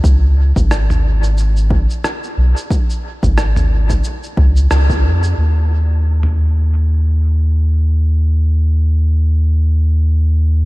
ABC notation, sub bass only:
X:1
M:4/4
L:1/16
Q:"Swing 16ths" 1/4=90
K:Dbmix
V:1 name="Sub bass" clef=bass
D,,3 A,,,8 z3 C,, z | z3 A,,,4- A,,, z2 D,,2 D,,2 F,,2 | E,,16- | E,,16 |]